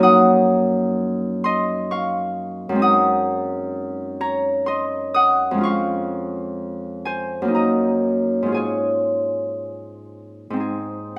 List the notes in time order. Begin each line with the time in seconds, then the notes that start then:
Already playing: F#2 F#3 A#3 D#5 A#5
0.00 D#4 F#5 D#6
1.44 D#5 C6
1.91 F5 C#6
2.69 F#2 G#3
2.75 C4 D#4
2.82 F#5 D#6
4.21 C#5 A#5
4.66 D#5 C6
5.14 F#5 D#6
5.51 F2 G#3
5.58 C#4 F4
5.63 F5 C#6
7.05 C5 G#5
7.42 F#2 A#3
7.48 D#4
7.55 D#5 A#5
8.42 G#2 C#4
8.48 F4 G#4
8.54 C#5 G#5
10.50 G#2 C4
10.56 D#4 G#4